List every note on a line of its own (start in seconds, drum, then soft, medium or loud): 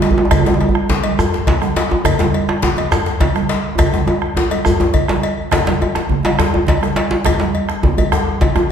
0.02 bombo rim soft
0.02 cowbell soft
0.02 djembe slap medium
0.02 djembe tone medium
0.11 djembe bass medium
0.18 djembe tone loud
0.25 djembe tone medium
0.31 bombo rim loud
0.31 bombo low medium
0.31 cowbell medium
0.31 djembe tone medium
0.31 djembe bass medium
0.31 low conga medium
0.31 shekere medium
0.40 djembe bass medium
0.46 bombo rim soft
0.46 djembe slap medium
0.46 high conga medium
0.46 djembe tone medium
0.54 djembe tone medium
0.60 bombo rim soft
0.60 cowbell soft
0.60 djembe tone medium
0.69 djembe bass medium
0.75 bombo rim medium
0.89 bombo rim soft
0.89 bombo low medium
0.89 djembe slap medium
0.89 low conga medium
1.04 cowbell medium
1.04 high conga medium
1.19 bombo rim medium
1.19 djembe tone loud
1.19 djembe bass medium
1.19 shekere medium
1.32 bombo rim soft
1.32 djembe slap medium
1.32 high conga soft
1.32 shekere soft
1.47 bombo low loud
1.47 cowbell soft
1.47 djembe slap medium
1.47 low conga medium
1.47 shekere soft
1.62 bombo rim medium
1.62 high conga medium
1.62 djembe tone medium
1.76 bombo rim soft
1.76 cowbell medium
1.76 djembe slap medium
1.91 djembe tone medium
2.05 bombo rim medium
2.05 bombo low medium
2.05 cowbell medium
2.05 djembe bass medium
2.05 low conga medium
2.05 shekere medium
2.19 bombo rim soft
2.19 djembe slap medium
2.19 djembe tone medium
2.19 high conga medium
2.34 bombo rim soft
2.34 cowbell soft
2.49 bombo rim medium
2.49 djembe slap medium
2.62 bombo rim soft
2.62 bombo low loud
2.62 djembe slap medium
2.62 djembe tone loud
2.62 low conga medium
2.76 cowbell medium
2.76 djembe tone medium
2.76 high conga medium
2.92 bombo rim loud
2.92 djembe slap medium
2.92 djembe bass medium
2.92 shekere medium
3.06 bombo rim soft
3.06 djembe slap medium
3.06 high conga soft
3.06 shekere soft
3.20 bombo low loud
3.20 cowbell medium
3.20 djembe slap medium
3.20 low conga medium
3.20 shekere soft
3.35 bombo rim medium
3.35 high conga medium
3.35 djembe tone medium
3.49 bombo rim soft
3.49 cowbell medium
3.49 djembe slap medium
3.78 bombo rim loud
3.78 bombo low loud
3.78 cowbell medium
3.78 high conga soft
3.78 djembe tone loud
3.78 low conga medium
3.78 djembe bass medium
3.78 shekere medium
3.92 bombo rim soft
3.92 djembe slap medium
3.92 high conga medium
3.92 djembe tone medium
4.07 cowbell soft
4.07 high conga soft
4.07 djembe tone loud
4.07 shekere soft
4.21 bombo rim medium
4.21 djembe slap soft
4.21 high conga soft
4.35 bombo low medium
4.35 djembe slap medium
4.35 high conga soft
4.35 djembe tone loud
4.50 bombo rim soft
4.50 cowbell medium
4.50 djembe slap soft
4.50 high conga medium
4.50 djembe tone medium
4.50 shekere soft
4.65 bombo rim medium
4.65 djembe tone loud
4.65 djembe bass medium
4.65 shekere medium
4.80 djembe slap medium
4.80 djembe tone loud
4.94 bombo low loud
4.94 cowbell medium
4.94 high conga soft
4.94 low conga medium
4.94 shekere soft
5.08 bombo rim medium
5.08 djembe slap medium
5.08 djembe slap soft
5.08 high conga medium
5.08 djembe tone medium
5.23 cowbell medium
5.23 shekere soft
5.51 bombo rim medium
5.51 bombo low medium
5.51 cowbell medium
5.51 djembe slap loud
5.51 djembe slap medium
5.51 low conga medium
5.51 djembe bass medium
5.66 djembe slap medium
5.66 high conga medium
5.66 djembe tone medium
5.80 cowbell soft
5.80 high conga soft
5.80 djembe tone medium
5.95 bombo rim medium
5.95 djembe slap medium
5.95 high conga soft
6.09 bombo low medium
6.09 low conga medium
6.23 cowbell soft
6.23 djembe slap loud
6.23 high conga medium
6.23 djembe tone medium
6.39 bombo rim medium
6.39 djembe slap medium
6.39 djembe bass medium
6.53 high conga soft
6.53 djembe tone medium
6.67 bombo low loud
6.67 cowbell soft
6.67 djembe slap medium
6.67 low conga medium
6.81 bombo rim medium
6.81 djembe slap soft
6.81 high conga medium
6.81 djembe tone soft
6.96 cowbell soft
6.96 djembe slap medium
7.11 djembe slap medium
7.11 djembe slap soft
7.25 bombo rim medium
7.25 bombo low medium
7.25 cowbell medium
7.25 djembe slap medium
7.25 djembe tone medium
7.25 low conga medium
7.25 djembe bass medium
7.39 djembe slap medium
7.39 high conga medium
7.39 djembe tone soft
7.54 cowbell soft
7.54 high conga soft
7.68 bombo rim medium
7.68 djembe slap medium
7.68 high conga soft
7.83 bombo low medium
7.83 djembe tone medium
7.83 high conga soft
7.83 low conga medium
7.97 cowbell soft
7.97 high conga medium
7.97 djembe tone soft
7.97 djembe bass medium
8.12 bombo rim medium
8.12 djembe slap medium
8.12 djembe bass medium
8.26 high conga soft
8.41 bombo low loud
8.41 cowbell soft
8.41 djembe slap medium
8.41 low conga medium
8.56 bombo rim medium
8.56 djembe slap soft
8.56 djembe tone loud
8.56 djembe tone soft
8.56 high conga medium